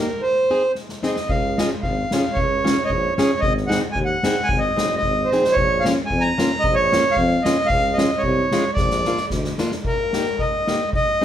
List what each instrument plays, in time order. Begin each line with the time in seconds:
0.00 accordion A#4
0.21 accordion C5
0.51 steel-string acoustic guitar C4 D#4 G#4
0.75 snare
0.89 snare
1.02 steel-string acoustic guitar C4 D#4 G#4, accordion D#5, snare
1.16 snare
1.29 tuba C#2, accordion F5, kick
1.58 steel-string acoustic guitar C#4 F4 G#4, accordion D#5, snare
1.82 tuba G#1, accordion F5, kick
2.11 steel-string acoustic guitar C#4 F4 G#4, snare
2.33 accordion C#5, kick
2.37 tuba C#2
2.64 steel-string acoustic guitar C#4 F4 G#4, snare
2.84 accordion C#5 D#5
2.90 tuba A#1, kick
3.16 steel-string acoustic guitar C#4 F4 G#4, accordion C#5, snare
3.40 tuba G#1, accordion D#5, kick
3.57 snare
3.67 steel-string acoustic guitar C4 D#4 G#4, accordion F#5, snare
3.92 tuba D#2, accordion G#5, kick
4.05 accordion F#5
4.23 steel-string acoustic guitar C4 D#4 G#4, snare
4.44 accordion G#5
4.49 tuba G#1, kick
4.58 accordion D#5
4.77 tuba F#1, steel-string acoustic guitar C4 D#4 G#4, snare
4.97 accordion D#5
5.03 tuba G#1, kick
5.25 accordion C5
5.31 tuba A#1, steel-string acoustic guitar C4 D#4 G#4, snare
5.44 snare
5.52 accordion C#5
5.57 tuba A#1, kick
5.80 accordion F5
5.84 steel-string acoustic guitar A#3 C#4 F4, snare
6.06 accordion G#5
6.10 tuba F2, kick
6.21 accordion A#5
6.38 steel-string acoustic guitar A#3 C#4 F4, snare
6.59 accordion D#5
6.64 tuba A#1, kick
6.75 accordion C#5
6.92 steel-string acoustic guitar A#3 C#4 F4, snare
7.11 accordion F5
7.17 tuba F2, kick
7.43 steel-string acoustic guitar A#3 C#4 F4, accordion D#5, snare
7.66 accordion F5, kick
7.70 tuba C#2
7.94 accordion D#5
7.98 steel-string acoustic guitar G#3 C#4 F4, snare
8.18 accordion C#5
8.23 tuba C2, kick
8.51 steel-string acoustic guitar G#3 C#4 F4, snare
8.73 tuba A#1, accordion D5, kick, snare
8.90 snare
9.05 steel-string acoustic guitar A#3 D4 F4, snare
9.17 snare
9.30 tuba D2, kick, snare
9.44 snare
9.58 steel-string acoustic guitar A#3 D4 F4, snare
9.72 snare
9.84 accordion A#4, kick, crash
10.13 steel-string acoustic guitar A#3 D#4 G4, snare
10.26 snare
10.39 accordion D#5, kick
10.67 steel-string acoustic guitar A#3 D#4 G4, snare
10.93 accordion D#5, kick
11.21 steel-string acoustic guitar C4 G#4, snare